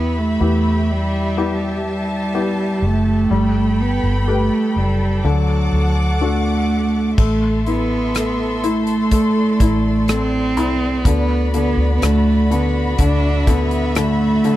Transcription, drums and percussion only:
7.18 kick, crash
7.66 closed hi-hat
8.15 cross-stick, closed hi-hat
8.64 closed hi-hat
8.87 closed hi-hat
9.11 kick, closed hi-hat
9.60 kick, closed hi-hat
10.08 cross-stick, closed hi-hat
10.57 closed hi-hat
11.05 kick, closed hi-hat
11.54 closed hi-hat
12.02 cross-stick, closed hi-hat
12.51 closed hi-hat
12.98 kick, closed hi-hat
13.47 kick, closed hi-hat
13.71 closed hi-hat
13.95 cross-stick, closed hi-hat
14.44 closed hi-hat

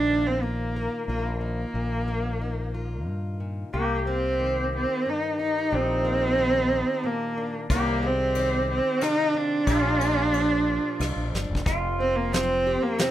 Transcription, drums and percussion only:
7.70 kick, ride
8.35 ride
9.01 cross-stick, ride
9.67 kick, ride
10.01 ride
10.34 ride
11.00 cross-stick, ride
11.35 snare
11.55 kick
11.66 kick, closed hi-hat
12.33 snare, closed hi-hat
12.98 snare, closed hi-hat

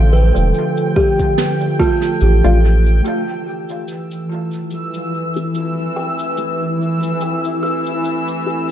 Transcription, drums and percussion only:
0.36 cabasa
0.55 cabasa
0.77 cabasa
0.96 kick
1.19 kick, cabasa
1.38 snare, cabasa
1.61 cabasa
1.80 kick
2.03 cabasa
2.21 cabasa
2.44 cabasa
2.87 cabasa
3.05 cabasa
3.69 cabasa
3.88 cabasa
4.11 cabasa
4.53 cabasa
4.71 cabasa
4.94 cabasa
5.37 cabasa
5.55 cabasa
6.19 cabasa
6.37 cabasa
7.03 cabasa
7.21 cabasa
7.44 cabasa
7.86 cabasa
8.05 cabasa
8.28 cabasa

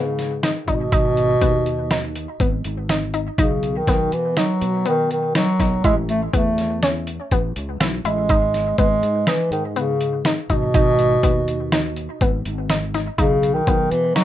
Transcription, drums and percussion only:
0.19 snare, closed hi-hat
0.43 snare, closed hi-hat
0.68 kick, closed hi-hat
0.92 kick, closed hi-hat
1.17 closed hi-hat
1.41 kick, closed hi-hat
1.66 closed hi-hat
1.91 snare, closed hi-hat
2.15 closed hi-hat
2.40 kick, closed hi-hat
2.64 closed hi-hat
2.89 snare, closed hi-hat
3.14 closed hi-hat
3.38 kick, closed hi-hat
3.63 closed hi-hat
3.87 kick, snare, closed hi-hat
4.12 closed hi-hat
4.37 snare, closed hi-hat
4.61 closed hi-hat
4.86 closed hi-hat
5.11 closed hi-hat
5.35 snare, closed hi-hat
5.60 kick, snare, closed hi-hat
5.84 kick, closed hi-hat
6.09 closed hi-hat
6.33 kick, closed hi-hat
6.58 snare, closed hi-hat
6.83 snare, closed hi-hat
7.07 closed hi-hat
7.31 kick, closed hi-hat
7.56 closed hi-hat
7.81 snare, closed hi-hat
8.05 closed hi-hat
8.29 kick, closed hi-hat
8.54 snare, closed hi-hat
8.78 kick, closed hi-hat
9.03 closed hi-hat
9.27 snare, closed hi-hat
9.52 closed hi-hat
9.76 closed hi-hat
10.01 closed hi-hat
10.25 snare, closed hi-hat
10.50 kick, closed hi-hat
10.74 kick, closed hi-hat
10.99 closed hi-hat
11.23 kick, closed hi-hat
11.48 closed hi-hat
11.72 snare, closed hi-hat
11.96 closed hi-hat
12.21 kick, closed hi-hat
12.45 closed hi-hat
12.70 snare, closed hi-hat
12.94 snare, closed hi-hat
13.18 kick, closed hi-hat
13.43 closed hi-hat
13.67 kick, closed hi-hat
13.92 closed hi-hat
14.16 snare, closed hi-hat

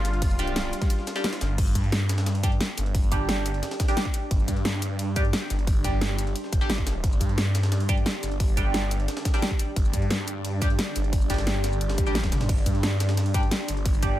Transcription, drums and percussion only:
0.05 snare, closed hi-hat, ride, shaker
0.13 ride
0.22 kick, closed hi-hat, open hi-hat
0.30 shaker
0.39 closed hi-hat, ride, shaker
0.47 closed hi-hat
0.56 snare, closed hi-hat, ride
0.73 closed hi-hat, ride, shaker
0.82 kick, snare, closed hi-hat, ride, shaker
0.90 closed hi-hat, ride
0.99 snare
1.07 snare, closed hi-hat, ride, shaker
1.16 snare, closed hi-hat, ride, shaker
1.24 snare, closed hi-hat, ride
1.33 snare, closed hi-hat, ride
1.41 snare, closed hi-hat, ride, shaker
1.58 kick, closed hi-hat, crash, ride
1.67 shaker
1.75 kick, closed hi-hat, ride, shaker
1.84 ride
1.92 snare, closed hi-hat, ride
2.09 snare, closed hi-hat, ride, shaker
2.18 snare, ride
2.26 snare, closed hi-hat, ride
2.35 ride
2.43 kick, snare, closed hi-hat, ride, shaker
2.52 ride
2.60 snare, closed hi-hat, ride
2.78 snare, closed hi-hat, ride, shaker
2.86 ride
2.95 kick, closed hi-hat, open hi-hat
3.03 shaker
3.12 kick, closed hi-hat, ride, shaker
3.29 snare, closed hi-hat, ride
3.46 closed hi-hat, ride, shaker
3.54 ride
3.63 snare, closed hi-hat, ride
3.71 snare, ride
3.80 kick, snare, closed hi-hat, ride, shaker
3.88 snare, ride, shaker
3.97 snare, closed hi-hat
4.05 kick
4.14 closed hi-hat, ride, shaker
4.31 kick, closed hi-hat, ride
4.39 shaker
4.48 kick, closed hi-hat, ride, shaker
4.57 ride
4.65 snare, closed hi-hat, ride
4.82 closed hi-hat, ride, shaker
4.99 closed hi-hat, ride
5.16 kick, snare, closed hi-hat, ride, shaker
5.25 ride
5.33 snare, closed hi-hat, ride
5.50 snare, closed hi-hat, ride, shaker
5.59 ride
5.67 kick, closed hi-hat, open hi-hat
5.76 shaker
5.84 kick, closed hi-hat, ride, shaker
6.01 snare, closed hi-hat, ride
6.19 closed hi-hat, ride, shaker
6.27 ride
6.36 closed hi-hat, ride
6.44 snare
6.53 kick, closed hi-hat, ride, shaker
6.61 ride, shaker
6.70 snare, closed hi-hat, ride
6.78 kick, snare
6.87 snare, closed hi-hat, ride, shaker
7.04 kick, closed hi-hat, ride
7.12 shaker
7.21 kick, closed hi-hat, ride, shaker
7.29 ride
7.38 snare, closed hi-hat, ride
7.55 snare, closed hi-hat, ride, shaker
7.63 snare, ride
7.72 snare, closed hi-hat, ride
7.80 ride
7.89 kick, snare, closed hi-hat, ride, shaker
7.97 ride
8.06 snare, closed hi-hat, ride
8.23 snare, closed hi-hat, ride, shaker
8.32 ride
8.40 kick, closed hi-hat, open hi-hat
8.49 shaker
8.57 kick, closed hi-hat, ride, shaker
8.74 snare, closed hi-hat, ride
8.91 closed hi-hat, ride, shaker
9.00 ride
9.08 snare, closed hi-hat, ride
9.17 snare, ride
9.25 kick, snare, closed hi-hat, ride, shaker
9.34 snare, ride, shaker
9.42 snare, closed hi-hat
9.51 kick
9.59 closed hi-hat, ride, shaker
9.76 kick, closed hi-hat, ride
9.85 shaker
9.93 kick, closed hi-hat, ride, shaker
10.02 ride
10.10 snare, closed hi-hat, ride
10.28 closed hi-hat, shaker
10.45 closed hi-hat, ride
10.62 kick, snare, closed hi-hat, ride, shaker
10.70 ride
10.79 snare, closed hi-hat, ride
10.96 snare, closed hi-hat, ride, shaker
11.04 ride
11.13 kick, closed hi-hat, open hi-hat
11.21 shaker
11.30 kick, snare, closed hi-hat, ride, shaker
11.34 snare, ride
11.38 snare, ride
11.47 snare, closed hi-hat, ride
11.64 snare, closed hi-hat, ride, shaker
11.72 shaker
11.81 closed hi-hat, ride
11.89 snare, ride
11.98 kick, snare, closed hi-hat, shaker
12.07 ride, shaker
12.15 snare, closed hi-hat, high tom, ride
12.24 kick, snare, high tom, ride
12.32 snare, closed hi-hat, mid tom, ride, shaker
12.41 snare, mid tom, ride
12.49 kick, closed hi-hat, ride, ride bell, crash
12.58 shaker
12.66 kick, closed hi-hat, ride, ride bell, shaker
12.75 ride
12.83 snare, closed hi-hat, ride, ride bell
13.00 snare, closed hi-hat, ride, ride bell, shaker
13.09 snare, ride
13.17 snare, closed hi-hat, ride, ride bell
13.26 ride
13.34 kick, snare, closed hi-hat, ride, ride bell, shaker
13.43 ride
13.51 snare, closed hi-hat, ride, ride bell
13.68 snare, closed hi-hat, ride, ride bell, shaker
13.77 ride
13.86 kick, closed hi-hat, open hi-hat, ride bell
13.94 shaker
14.03 kick, closed hi-hat, ride, ride bell, shaker

